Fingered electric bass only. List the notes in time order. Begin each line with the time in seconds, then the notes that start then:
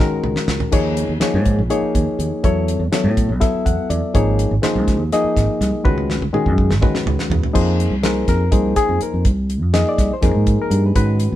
0.12 muted fingered electric bass stroke
0.24 C#2
0.48 C#2
0.73 D#2
1.09 D#2
1.21 muted fingered electric bass stroke
1.34 G#2
1.58 A#1
1.82 muted fingered electric bass stroke
1.95 D#2
2.19 D#2
2.44 E2
2.79 E2
2.92 muted fingered electric bass stroke
3.04 A2
3.29 B1
3.54 muted fingered electric bass stroke
3.66 E2
3.90 E2
4.15 G#1
4.51 G#1
4.75 C#2
4.99 D#2
5.24 muted fingered electric bass stroke
5.37 G#1
5.61 C2
5.85 C#2
6.21 C#2
6.33 muted fingered electric bass stroke
6.46 F#2
6.70 G#1
6.94 muted fingered electric bass stroke
7.06 C#2
7.30 E2
7.55 F2
7.90 C2
8.28 F2
8.52 C2
8.89 F2
9.02 muted fingered electric bass stroke
9.14 F2
9.25 C2
9.62 F2
9.98 C2
10.11 muted fingered electric bass stroke
10.23 F2
10.35 G#2
10.71 G2
10.95 G#2
11.32 D#2